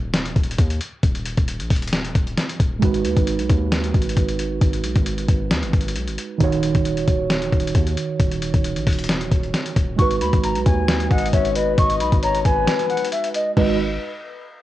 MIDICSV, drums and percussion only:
0, 0, Header, 1, 2, 480
1, 0, Start_track
1, 0, Key_signature, 5, "minor"
1, 0, Tempo, 447761
1, 1106, Time_signature, 4, 2, 24, 8
1, 15673, End_track
2, 0, Start_track
2, 0, Title_t, "Drums"
2, 146, Note_on_c, 9, 38, 124
2, 146, Note_on_c, 9, 42, 91
2, 253, Note_off_c, 9, 38, 0
2, 253, Note_off_c, 9, 42, 0
2, 273, Note_on_c, 9, 42, 54
2, 380, Note_off_c, 9, 42, 0
2, 386, Note_on_c, 9, 36, 100
2, 386, Note_on_c, 9, 42, 42
2, 466, Note_off_c, 9, 42, 0
2, 466, Note_on_c, 9, 42, 57
2, 493, Note_off_c, 9, 36, 0
2, 546, Note_off_c, 9, 42, 0
2, 546, Note_on_c, 9, 42, 68
2, 626, Note_off_c, 9, 42, 0
2, 626, Note_on_c, 9, 42, 83
2, 627, Note_on_c, 9, 36, 88
2, 733, Note_off_c, 9, 42, 0
2, 734, Note_off_c, 9, 36, 0
2, 753, Note_on_c, 9, 42, 60
2, 860, Note_off_c, 9, 42, 0
2, 866, Note_on_c, 9, 42, 80
2, 973, Note_off_c, 9, 42, 0
2, 1106, Note_on_c, 9, 36, 123
2, 1106, Note_on_c, 9, 42, 88
2, 1213, Note_off_c, 9, 36, 0
2, 1213, Note_off_c, 9, 42, 0
2, 1233, Note_on_c, 9, 42, 61
2, 1340, Note_off_c, 9, 42, 0
2, 1346, Note_on_c, 9, 42, 81
2, 1453, Note_off_c, 9, 42, 0
2, 1473, Note_on_c, 9, 42, 58
2, 1474, Note_on_c, 9, 36, 92
2, 1580, Note_off_c, 9, 42, 0
2, 1581, Note_off_c, 9, 36, 0
2, 1586, Note_on_c, 9, 42, 81
2, 1693, Note_off_c, 9, 42, 0
2, 1713, Note_on_c, 9, 42, 57
2, 1820, Note_off_c, 9, 42, 0
2, 1826, Note_on_c, 9, 42, 48
2, 1826, Note_on_c, 9, 46, 81
2, 1827, Note_on_c, 9, 36, 96
2, 1890, Note_off_c, 9, 42, 0
2, 1890, Note_on_c, 9, 42, 56
2, 1933, Note_off_c, 9, 46, 0
2, 1934, Note_off_c, 9, 36, 0
2, 1953, Note_off_c, 9, 42, 0
2, 1953, Note_on_c, 9, 42, 67
2, 2010, Note_off_c, 9, 42, 0
2, 2010, Note_on_c, 9, 42, 75
2, 2066, Note_off_c, 9, 42, 0
2, 2066, Note_on_c, 9, 38, 127
2, 2066, Note_on_c, 9, 42, 93
2, 2173, Note_off_c, 9, 38, 0
2, 2173, Note_off_c, 9, 42, 0
2, 2193, Note_on_c, 9, 42, 55
2, 2300, Note_off_c, 9, 42, 0
2, 2306, Note_on_c, 9, 36, 102
2, 2306, Note_on_c, 9, 42, 69
2, 2413, Note_off_c, 9, 36, 0
2, 2413, Note_off_c, 9, 42, 0
2, 2433, Note_on_c, 9, 42, 38
2, 2541, Note_off_c, 9, 42, 0
2, 2546, Note_on_c, 9, 38, 89
2, 2546, Note_on_c, 9, 42, 83
2, 2653, Note_off_c, 9, 38, 0
2, 2654, Note_off_c, 9, 42, 0
2, 2673, Note_on_c, 9, 42, 61
2, 2781, Note_off_c, 9, 42, 0
2, 2785, Note_on_c, 9, 36, 106
2, 2786, Note_on_c, 9, 42, 83
2, 2893, Note_off_c, 9, 36, 0
2, 2893, Note_off_c, 9, 42, 0
2, 3026, Note_on_c, 9, 42, 87
2, 3027, Note_on_c, 9, 36, 125
2, 3134, Note_off_c, 9, 36, 0
2, 3134, Note_off_c, 9, 42, 0
2, 3154, Note_on_c, 9, 42, 61
2, 3261, Note_off_c, 9, 42, 0
2, 3266, Note_on_c, 9, 42, 79
2, 3374, Note_off_c, 9, 42, 0
2, 3394, Note_on_c, 9, 42, 59
2, 3395, Note_on_c, 9, 36, 94
2, 3501, Note_off_c, 9, 42, 0
2, 3502, Note_off_c, 9, 36, 0
2, 3507, Note_on_c, 9, 42, 80
2, 3614, Note_off_c, 9, 42, 0
2, 3634, Note_on_c, 9, 42, 59
2, 3741, Note_off_c, 9, 42, 0
2, 3746, Note_on_c, 9, 42, 74
2, 3747, Note_on_c, 9, 36, 95
2, 3854, Note_off_c, 9, 36, 0
2, 3854, Note_off_c, 9, 42, 0
2, 3986, Note_on_c, 9, 38, 124
2, 3987, Note_on_c, 9, 42, 91
2, 4094, Note_off_c, 9, 38, 0
2, 4094, Note_off_c, 9, 42, 0
2, 4114, Note_on_c, 9, 42, 57
2, 4221, Note_off_c, 9, 42, 0
2, 4226, Note_on_c, 9, 36, 97
2, 4226, Note_on_c, 9, 42, 43
2, 4307, Note_off_c, 9, 42, 0
2, 4307, Note_on_c, 9, 42, 58
2, 4333, Note_off_c, 9, 36, 0
2, 4386, Note_off_c, 9, 42, 0
2, 4386, Note_on_c, 9, 42, 69
2, 4466, Note_off_c, 9, 42, 0
2, 4466, Note_on_c, 9, 42, 82
2, 4467, Note_on_c, 9, 36, 89
2, 4573, Note_off_c, 9, 42, 0
2, 4574, Note_off_c, 9, 36, 0
2, 4593, Note_on_c, 9, 42, 59
2, 4701, Note_off_c, 9, 42, 0
2, 4706, Note_on_c, 9, 42, 83
2, 4813, Note_off_c, 9, 42, 0
2, 4946, Note_on_c, 9, 36, 121
2, 4946, Note_on_c, 9, 42, 84
2, 5053, Note_off_c, 9, 36, 0
2, 5053, Note_off_c, 9, 42, 0
2, 5073, Note_on_c, 9, 42, 59
2, 5180, Note_off_c, 9, 42, 0
2, 5186, Note_on_c, 9, 42, 80
2, 5293, Note_off_c, 9, 42, 0
2, 5313, Note_on_c, 9, 42, 57
2, 5314, Note_on_c, 9, 36, 98
2, 5420, Note_off_c, 9, 42, 0
2, 5422, Note_off_c, 9, 36, 0
2, 5426, Note_on_c, 9, 42, 85
2, 5533, Note_off_c, 9, 42, 0
2, 5553, Note_on_c, 9, 42, 55
2, 5660, Note_off_c, 9, 42, 0
2, 5666, Note_on_c, 9, 36, 100
2, 5666, Note_on_c, 9, 42, 73
2, 5773, Note_off_c, 9, 42, 0
2, 5774, Note_off_c, 9, 36, 0
2, 5906, Note_on_c, 9, 38, 125
2, 5906, Note_on_c, 9, 42, 92
2, 6013, Note_off_c, 9, 38, 0
2, 6013, Note_off_c, 9, 42, 0
2, 6033, Note_on_c, 9, 42, 55
2, 6140, Note_off_c, 9, 42, 0
2, 6146, Note_on_c, 9, 36, 100
2, 6146, Note_on_c, 9, 42, 42
2, 6226, Note_off_c, 9, 42, 0
2, 6226, Note_on_c, 9, 42, 56
2, 6253, Note_off_c, 9, 36, 0
2, 6306, Note_off_c, 9, 42, 0
2, 6306, Note_on_c, 9, 42, 68
2, 6385, Note_off_c, 9, 42, 0
2, 6385, Note_on_c, 9, 42, 83
2, 6492, Note_off_c, 9, 42, 0
2, 6513, Note_on_c, 9, 42, 59
2, 6620, Note_off_c, 9, 42, 0
2, 6626, Note_on_c, 9, 42, 84
2, 6733, Note_off_c, 9, 42, 0
2, 6866, Note_on_c, 9, 36, 121
2, 6866, Note_on_c, 9, 42, 86
2, 6973, Note_off_c, 9, 36, 0
2, 6973, Note_off_c, 9, 42, 0
2, 6993, Note_on_c, 9, 42, 61
2, 7101, Note_off_c, 9, 42, 0
2, 7106, Note_on_c, 9, 42, 84
2, 7213, Note_off_c, 9, 42, 0
2, 7233, Note_on_c, 9, 42, 59
2, 7234, Note_on_c, 9, 36, 95
2, 7340, Note_off_c, 9, 42, 0
2, 7342, Note_off_c, 9, 36, 0
2, 7346, Note_on_c, 9, 42, 79
2, 7453, Note_off_c, 9, 42, 0
2, 7473, Note_on_c, 9, 42, 57
2, 7581, Note_off_c, 9, 42, 0
2, 7586, Note_on_c, 9, 42, 75
2, 7587, Note_on_c, 9, 36, 97
2, 7694, Note_off_c, 9, 36, 0
2, 7694, Note_off_c, 9, 42, 0
2, 7826, Note_on_c, 9, 38, 122
2, 7826, Note_on_c, 9, 42, 91
2, 7934, Note_off_c, 9, 38, 0
2, 7934, Note_off_c, 9, 42, 0
2, 7954, Note_on_c, 9, 42, 54
2, 8061, Note_off_c, 9, 42, 0
2, 8066, Note_on_c, 9, 36, 99
2, 8066, Note_on_c, 9, 42, 41
2, 8147, Note_off_c, 9, 42, 0
2, 8147, Note_on_c, 9, 42, 57
2, 8174, Note_off_c, 9, 36, 0
2, 8226, Note_off_c, 9, 42, 0
2, 8226, Note_on_c, 9, 42, 68
2, 8307, Note_off_c, 9, 42, 0
2, 8307, Note_on_c, 9, 36, 88
2, 8307, Note_on_c, 9, 42, 83
2, 8414, Note_off_c, 9, 36, 0
2, 8414, Note_off_c, 9, 42, 0
2, 8434, Note_on_c, 9, 42, 60
2, 8541, Note_off_c, 9, 42, 0
2, 8547, Note_on_c, 9, 42, 81
2, 8654, Note_off_c, 9, 42, 0
2, 8787, Note_on_c, 9, 36, 118
2, 8787, Note_on_c, 9, 42, 86
2, 8894, Note_off_c, 9, 36, 0
2, 8894, Note_off_c, 9, 42, 0
2, 8914, Note_on_c, 9, 42, 62
2, 9021, Note_off_c, 9, 42, 0
2, 9027, Note_on_c, 9, 42, 81
2, 9134, Note_off_c, 9, 42, 0
2, 9154, Note_on_c, 9, 42, 59
2, 9155, Note_on_c, 9, 36, 97
2, 9261, Note_off_c, 9, 42, 0
2, 9262, Note_off_c, 9, 36, 0
2, 9267, Note_on_c, 9, 42, 81
2, 9374, Note_off_c, 9, 42, 0
2, 9394, Note_on_c, 9, 42, 56
2, 9501, Note_off_c, 9, 42, 0
2, 9507, Note_on_c, 9, 36, 97
2, 9507, Note_on_c, 9, 42, 46
2, 9507, Note_on_c, 9, 46, 80
2, 9570, Note_off_c, 9, 42, 0
2, 9570, Note_on_c, 9, 42, 58
2, 9614, Note_off_c, 9, 36, 0
2, 9614, Note_off_c, 9, 46, 0
2, 9634, Note_off_c, 9, 42, 0
2, 9634, Note_on_c, 9, 42, 67
2, 9690, Note_off_c, 9, 42, 0
2, 9690, Note_on_c, 9, 42, 78
2, 9746, Note_on_c, 9, 38, 124
2, 9747, Note_off_c, 9, 42, 0
2, 9747, Note_on_c, 9, 42, 94
2, 9854, Note_off_c, 9, 38, 0
2, 9854, Note_off_c, 9, 42, 0
2, 9874, Note_on_c, 9, 42, 57
2, 9981, Note_off_c, 9, 42, 0
2, 9986, Note_on_c, 9, 36, 100
2, 9987, Note_on_c, 9, 42, 70
2, 10094, Note_off_c, 9, 36, 0
2, 10094, Note_off_c, 9, 42, 0
2, 10114, Note_on_c, 9, 42, 39
2, 10221, Note_off_c, 9, 42, 0
2, 10226, Note_on_c, 9, 38, 88
2, 10226, Note_on_c, 9, 42, 85
2, 10333, Note_off_c, 9, 38, 0
2, 10334, Note_off_c, 9, 42, 0
2, 10353, Note_on_c, 9, 42, 60
2, 10461, Note_off_c, 9, 42, 0
2, 10466, Note_on_c, 9, 36, 101
2, 10467, Note_on_c, 9, 42, 83
2, 10573, Note_off_c, 9, 36, 0
2, 10574, Note_off_c, 9, 42, 0
2, 10706, Note_on_c, 9, 36, 123
2, 10707, Note_on_c, 9, 42, 85
2, 10814, Note_off_c, 9, 36, 0
2, 10814, Note_off_c, 9, 42, 0
2, 10834, Note_on_c, 9, 42, 59
2, 10941, Note_off_c, 9, 42, 0
2, 10946, Note_on_c, 9, 42, 82
2, 11053, Note_off_c, 9, 42, 0
2, 11073, Note_on_c, 9, 42, 57
2, 11074, Note_on_c, 9, 36, 98
2, 11180, Note_off_c, 9, 42, 0
2, 11182, Note_off_c, 9, 36, 0
2, 11186, Note_on_c, 9, 42, 84
2, 11293, Note_off_c, 9, 42, 0
2, 11313, Note_on_c, 9, 42, 57
2, 11421, Note_off_c, 9, 42, 0
2, 11426, Note_on_c, 9, 42, 76
2, 11427, Note_on_c, 9, 36, 97
2, 11533, Note_off_c, 9, 42, 0
2, 11534, Note_off_c, 9, 36, 0
2, 11666, Note_on_c, 9, 38, 123
2, 11666, Note_on_c, 9, 42, 92
2, 11773, Note_off_c, 9, 38, 0
2, 11773, Note_off_c, 9, 42, 0
2, 11793, Note_on_c, 9, 42, 57
2, 11901, Note_off_c, 9, 42, 0
2, 11906, Note_on_c, 9, 36, 100
2, 11906, Note_on_c, 9, 42, 43
2, 11986, Note_off_c, 9, 42, 0
2, 11986, Note_on_c, 9, 42, 58
2, 12013, Note_off_c, 9, 36, 0
2, 12066, Note_off_c, 9, 42, 0
2, 12066, Note_on_c, 9, 42, 67
2, 12146, Note_off_c, 9, 42, 0
2, 12146, Note_on_c, 9, 42, 83
2, 12147, Note_on_c, 9, 36, 88
2, 12253, Note_off_c, 9, 42, 0
2, 12254, Note_off_c, 9, 36, 0
2, 12273, Note_on_c, 9, 42, 60
2, 12380, Note_off_c, 9, 42, 0
2, 12386, Note_on_c, 9, 42, 87
2, 12493, Note_off_c, 9, 42, 0
2, 12626, Note_on_c, 9, 36, 124
2, 12626, Note_on_c, 9, 42, 85
2, 12733, Note_off_c, 9, 36, 0
2, 12733, Note_off_c, 9, 42, 0
2, 12753, Note_on_c, 9, 42, 61
2, 12860, Note_off_c, 9, 42, 0
2, 12866, Note_on_c, 9, 42, 81
2, 12973, Note_off_c, 9, 42, 0
2, 12993, Note_on_c, 9, 42, 58
2, 12994, Note_on_c, 9, 36, 98
2, 13100, Note_off_c, 9, 42, 0
2, 13101, Note_off_c, 9, 36, 0
2, 13106, Note_on_c, 9, 42, 86
2, 13213, Note_off_c, 9, 42, 0
2, 13234, Note_on_c, 9, 42, 58
2, 13341, Note_off_c, 9, 42, 0
2, 13346, Note_on_c, 9, 36, 96
2, 13346, Note_on_c, 9, 42, 74
2, 13453, Note_off_c, 9, 36, 0
2, 13453, Note_off_c, 9, 42, 0
2, 13586, Note_on_c, 9, 38, 126
2, 13586, Note_on_c, 9, 42, 91
2, 13693, Note_off_c, 9, 38, 0
2, 13693, Note_off_c, 9, 42, 0
2, 13713, Note_on_c, 9, 42, 57
2, 13820, Note_off_c, 9, 42, 0
2, 13826, Note_on_c, 9, 42, 43
2, 13906, Note_off_c, 9, 42, 0
2, 13906, Note_on_c, 9, 42, 57
2, 13985, Note_off_c, 9, 42, 0
2, 13985, Note_on_c, 9, 42, 68
2, 14066, Note_off_c, 9, 42, 0
2, 14066, Note_on_c, 9, 42, 84
2, 14173, Note_off_c, 9, 42, 0
2, 14193, Note_on_c, 9, 42, 61
2, 14300, Note_off_c, 9, 42, 0
2, 14306, Note_on_c, 9, 42, 88
2, 14413, Note_off_c, 9, 42, 0
2, 14546, Note_on_c, 9, 36, 107
2, 14546, Note_on_c, 9, 49, 86
2, 14653, Note_off_c, 9, 36, 0
2, 14653, Note_off_c, 9, 49, 0
2, 15673, End_track
0, 0, End_of_file